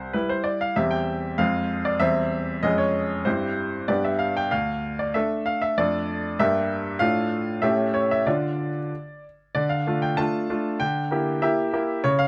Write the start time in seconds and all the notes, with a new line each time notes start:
Already playing: C2 C5
0.13 G3 E4 B4
0.29 C5
0.44 D5
0.61 F5
0.76 E2 G3 C4 G4 E5
0.91 G5
1.38 F2 G#3 C4 C5 F5
1.85 D5
2.00 E2 G3 C4 C5 E5
2.63 F2 G#3 C#4 G#4 D#5
2.78 C#5
3.25 G2 C4 E4 G4 C5
3.88 G2 B3 D4 G4 D5
4.04 E5
4.19 F5
4.37 G5
4.51 D2 F5
4.99 D5
5.14 A3 D4 A4 E5
5.46 F5
5.62 E5
5.78 F2 A3 D4 A4 D5
6.39 G2 A#3 D4 G4 E5
6.99 A2 A3 D4 F4 F5
7.62 A2 A3 C#4 G4 E5
7.94 C#5
8.11 E5
8.27 D3 D4 F4 D5
9.55 D3 D5
9.69 F5
9.87 A3 D4 F4
10.02 G5
10.17 A3 D4 F4 A5
10.50 A3 D4 F4
10.80 D3 G5
11.11 A#3 E4 G4
11.42 A#3 E4 G4 E5
11.73 A#3 E4 G4
12.04 C#3 C#5
12.19 F5